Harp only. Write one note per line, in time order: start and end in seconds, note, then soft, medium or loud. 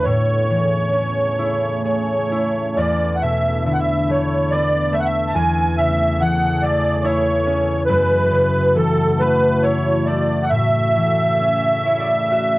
0.00 1.92 A3 medium
0.00 2.27 B3 medium
0.06 2.83 A2 medium
0.50 2.83 E3 soft
0.93 3.72 C#4 soft
1.39 2.31 E4 soft
1.85 4.16 G#4 soft
2.32 4.93 E4 soft
2.77 5.34 E2 medium
3.22 3.72 B2 soft
3.66 5.42 D3 soft
4.10 4.92 A3 soft
4.52 7.63 B3 medium
4.93 6.63 A3 medium
5.35 7.92 E2 medium
5.78 7.92 C#3 soft
6.22 7.92 E3 medium
6.63 9.20 A3 medium
7.05 9.63 E4 medium
7.47 10.36 C#4 medium
7.89 10.57 F#2 medium
8.31 10.57 C#3 medium
8.76 10.57 E3 medium
9.20 10.07 A3 medium
9.63 11.85 E4 medium
10.07 12.59 A3 medium
10.51 12.59 A2 medium
10.96 12.59 E3 soft
11.40 12.59 C#4 medium
11.86 12.59 E4 soft
11.86 12.06 C#5 medium
12.00 12.59 D5 medium
12.31 12.59 F#4 soft
12.31 12.59 E5 medium